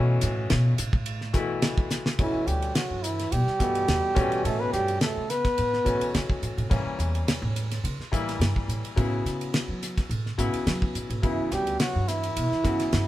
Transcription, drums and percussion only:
0.21 snare soft
0.21 hi-hat pedal medium
0.21 ride bell medium
0.50 snare loud
0.50 ride bell medium
0.78 snare soft
0.78 hi-hat pedal loud
0.78 ride bell medium
0.93 kick medium
1.06 ride bell medium
1.21 snare soft
1.34 kick medium
1.34 snare soft
1.34 hi-hat pedal medium
1.62 snare loud
1.62 ride bell medium
1.78 kick medium
1.90 snare medium
1.90 hi-hat pedal loud
2.06 snare medium
2.19 kick medium
2.19 ride medium
2.47 hi-hat pedal medium
2.47 ride medium
2.62 ride medium
2.75 snare loud
2.75 ride medium
3.04 hi-hat pedal medium
3.04 ride medium
3.19 snare soft
3.19 ride medium
3.32 ride medium
3.47 snare soft
3.60 kick medium
3.60 snare soft
3.60 hi-hat pedal medium
3.60 ride medium
3.75 ride medium
3.88 snare loud
3.88 ride medium
4.16 kick loud
4.16 hi-hat pedal medium
4.16 ride medium
4.32 ride soft
4.45 ride medium
4.73 snare soft
4.73 hi-hat pedal medium
4.73 ride medium
4.88 ride medium
5.01 snare loud
5.01 ride medium
5.30 snare soft
5.30 hi-hat pedal medium
5.30 ride medium
5.45 kick medium
5.45 snare soft
5.45 ride medium
5.58 ride medium
5.73 snare soft
5.86 kick medium
5.86 hi-hat pedal medium
5.86 ride medium
6.01 ride medium
6.15 snare medium
6.15 ride medium
6.30 kick medium
6.43 hi-hat pedal medium
6.43 ride medium
6.58 ride soft
6.71 kick medium
6.71 ride medium
7.00 hi-hat pedal medium
7.00 ride medium
7.15 ride medium
7.28 snare loud
7.28 ride medium
7.56 hi-hat pedal medium
7.56 ride medium
7.71 snare soft
7.71 ride medium
7.85 ride medium
8.00 snare soft
8.13 kick medium
8.13 hi-hat pedal medium
8.13 ride medium
8.29 snare soft
8.29 ride medium
8.41 snare loud
8.41 ride medium
8.56 kick medium
8.69 hi-hat pedal medium
8.69 ride medium
8.85 ride soft
8.97 kick medium
8.97 ride medium
9.26 snare soft
9.26 hi-hat pedal medium
9.26 ride medium
9.41 ride medium
9.54 snare loud
9.54 ride medium
9.83 snare soft
9.83 hi-hat pedal medium
9.83 ride medium
9.98 kick medium
9.98 snare soft
9.98 ride medium
10.11 ride medium
10.26 snare soft
10.39 kick medium
10.39 snare soft
10.39 hi-hat pedal medium
10.39 ride medium
10.54 ride medium
10.67 snare loud
10.67 ride medium
10.82 kick medium
10.95 hi-hat pedal medium
10.95 ride medium
11.10 ride medium
11.23 kick medium
11.23 ride medium
11.52 snare soft
11.52 hi-hat pedal medium
11.52 ride medium
11.67 ride medium
11.80 snare loud
11.80 ride medium
12.08 snare soft
12.08 hi-hat pedal medium
12.08 ride medium
12.23 ride medium
12.37 ride medium
12.52 snare soft
12.65 kick medium
12.65 snare soft
12.65 hi-hat pedal medium
12.65 ride medium
12.80 snare soft
12.80 ride medium
12.93 snare loud
12.93 ride medium

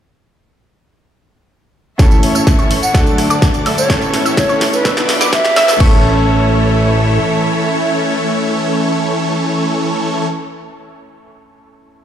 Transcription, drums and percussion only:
1.99 kick loud
1.99 snare soft
1.99 closed hi-hat medium
1.99 tambourine medium
2.11 closed hi-hat soft
2.11 tambourine soft
2.23 open hi-hat medium
2.35 closed hi-hat soft
2.35 tambourine medium
2.47 kick loud
2.47 snare medium
2.47 closed hi-hat medium
2.47 tambourine medium
2.59 closed hi-hat soft
2.59 tambourine soft
2.71 open hi-hat loud
2.83 closed hi-hat soft
2.83 tambourine medium
2.95 kick loud
2.95 snare medium
2.95 closed hi-hat medium
2.95 tambourine medium
3.06 closed hi-hat soft
3.06 tambourine soft
3.18 cross-stick medium
3.18 open hi-hat loud
3.30 closed hi-hat soft
3.30 tambourine medium
3.42 kick loud
3.42 snare medium
3.42 closed hi-hat medium
3.42 tambourine medium
3.54 closed hi-hat soft
3.54 tambourine soft
3.66 open hi-hat loud
3.78 closed hi-hat soft
3.78 tambourine medium
3.90 kick loud
3.90 snare medium
3.90 closed hi-hat medium
3.90 tambourine medium
4.02 closed hi-hat soft
4.02 tambourine soft
4.14 snare medium
4.14 open hi-hat loud
4.26 closed hi-hat soft
4.26 tambourine medium
4.37 kick loud
4.37 snare medium
4.37 closed hi-hat medium
4.37 tambourine medium
4.49 closed hi-hat soft
4.49 tambourine soft
4.61 snare medium
4.61 open hi-hat loud
4.73 closed hi-hat soft
4.73 tambourine medium
4.85 kick loud
4.85 snare medium
4.85 closed hi-hat medium
4.85 tambourine medium
4.97 snare medium
4.97 closed hi-hat soft
4.97 tambourine soft
5.09 snare medium
5.09 open hi-hat loud
5.21 snare medium
5.21 tambourine medium
5.33 kick loud
5.33 snare loud
5.33 closed hi-hat medium
5.33 tambourine medium
5.45 snare medium
5.45 closed hi-hat soft
5.45 tambourine soft
5.56 snare loud
5.56 open hi-hat loud
5.68 snare loud
5.68 tambourine medium
5.80 kick loud
5.80 crash medium

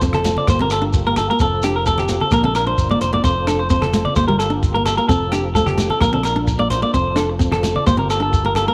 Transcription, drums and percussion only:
0.01 kick medium
0.01 shekere medium
0.13 cross-stick medium
0.13 high conga medium
0.24 closed hi-hat soft
0.24 low conga medium
0.24 shekere medium
0.37 high conga medium
0.47 kick medium
0.47 cross-stick medium
0.47 high conga medium
0.47 shekere medium
0.59 high conga medium
0.70 cross-stick medium
0.70 closed hi-hat soft
0.70 shekere medium
0.93 kick medium
0.93 shekere medium
1.16 cross-stick medium
1.16 closed hi-hat soft
1.16 low conga medium
1.16 shekere medium
1.39 kick medium
1.39 shekere medium
1.62 cross-stick medium
1.62 closed hi-hat medium
1.62 shekere medium
1.86 kick medium
1.86 shekere loud
1.98 cross-stick medium
1.98 high conga medium
2.08 closed hi-hat soft
2.08 low conga medium
2.08 shekere medium
2.21 high conga medium
2.31 kick medium
2.31 cross-stick medium
2.31 high conga medium
2.31 shekere medium
2.43 high conga medium
2.55 cross-stick medium
2.55 closed hi-hat soft
2.55 shekere medium
2.78 kick medium
2.78 shekere medium
2.90 high conga medium
3.01 closed hi-hat soft
3.01 low conga medium
3.01 shekere medium
3.13 low conga medium
3.24 kick medium
3.24 shekere medium
3.47 cross-stick medium
3.47 closed hi-hat soft
3.47 shekere medium
3.70 kick medium
3.70 shekere medium
3.82 cross-stick medium
3.82 high conga medium
3.93 closed hi-hat soft
3.93 low conga medium
3.93 shekere medium
4.05 high conga medium
4.16 kick loud
4.16 cross-stick medium
4.16 high conga medium
4.16 shekere medium
4.28 high conga medium
4.40 cross-stick medium
4.40 closed hi-hat medium
4.40 shekere medium
4.63 kick medium
4.63 shekere medium
4.86 cross-stick medium
4.86 closed hi-hat soft
4.86 low conga medium
4.86 shekere medium
5.09 kick medium
5.09 shekere medium
5.32 cross-stick medium
5.32 closed hi-hat soft
5.32 shekere medium
5.55 kick medium
5.55 shekere medium
5.67 cross-stick medium
5.67 high conga medium
5.78 closed hi-hat soft
5.78 low conga medium
5.78 shekere medium
5.90 high conga medium
6.01 kick medium
6.01 cross-stick medium
6.01 high conga medium
6.01 shekere medium
6.13 high conga medium
6.23 cross-stick medium
6.23 closed hi-hat soft
6.23 shekere medium
6.47 kick medium
6.47 shekere medium
6.70 closed hi-hat soft
6.70 low conga medium
6.70 shekere medium
6.94 kick medium
6.94 shekere medium
7.17 cross-stick medium
7.17 closed hi-hat soft
7.17 shekere medium
7.40 kick medium
7.40 shekere medium
7.52 cross-stick medium
7.52 high conga medium
7.63 closed hi-hat soft
7.63 low conga medium
7.63 shekere medium
7.76 high conga medium
7.87 kick loud
7.87 cross-stick medium
7.87 high conga medium
7.87 shekere medium
7.98 high conga medium
8.10 cross-stick medium
8.10 closed hi-hat soft
8.10 shekere medium
8.33 kick medium
8.33 shekere medium
8.55 cross-stick medium
8.55 closed hi-hat soft
8.55 low conga medium
8.55 shekere medium

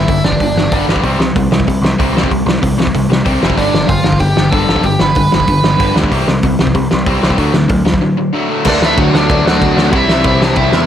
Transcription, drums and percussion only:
0.08 kick loud
0.08 open hi-hat medium
0.24 snare loud
0.32 kick medium
0.40 kick medium
0.40 open hi-hat medium
0.57 snare loud
0.72 kick loud
0.72 open hi-hat medium
0.89 snare loud
0.96 kick medium
1.04 kick medium
1.04 open hi-hat soft
1.20 snare loud
1.36 kick loud
1.36 open hi-hat medium
1.52 snare loud
1.60 kick medium
1.68 kick medium
1.68 open hi-hat medium
1.85 snare loud
2.00 kick loud
2.00 open hi-hat medium
2.17 snare loud
2.24 kick medium
2.31 kick medium
2.31 open hi-hat medium
2.48 snare loud
2.63 kick loud
2.63 open hi-hat medium
2.80 snare loud
2.87 kick medium
2.95 kick medium
2.95 open hi-hat medium
3.12 snare loud
3.25 kick loud
3.25 open hi-hat medium
3.43 snare loud
3.50 kick medium
3.58 kick medium
3.58 open hi-hat medium
3.74 snare loud
3.89 kick loud
3.89 open hi-hat medium
4.04 snare loud
4.13 kick medium
4.19 kick medium
4.19 open hi-hat medium
4.37 snare loud
4.52 kick loud
4.52 open hi-hat medium
4.69 snare loud
4.76 kick medium
4.83 kick medium
4.83 open hi-hat medium
4.99 snare loud
5.15 kick loud
5.15 open hi-hat medium
5.32 snare loud
5.40 kick medium
5.47 kick medium
5.47 open hi-hat medium
5.64 snare loud
5.80 kick loud
5.80 open hi-hat medium
5.96 snare loud
6.04 kick medium
6.12 kick medium
6.12 open hi-hat medium
6.28 snare loud
6.43 kick loud
6.43 open hi-hat medium
6.59 snare loud
6.67 kick medium
6.75 kick loud
6.75 open hi-hat medium
6.91 snare loud
7.06 kick loud
7.06 open hi-hat medium
7.23 snare loud
7.30 kick medium
7.38 kick medium
7.38 open hi-hat medium
7.54 snare loud
7.69 kick loud
7.69 open hi-hat medium
7.86 snare loud
7.94 kick medium
8.65 kick loud
8.65 crash loud
8.82 snare loud
8.98 kick loud
8.98 ride medium
9.15 snare loud
9.30 kick loud
9.30 ride medium
9.47 snare loud
9.62 kick loud
9.62 ride medium
9.78 snare loud
9.93 kick loud
9.93 ride medium
10.09 snare loud
10.24 kick loud
10.24 ride medium
10.42 snare loud
10.56 kick loud
10.56 ride medium
10.73 snare loud

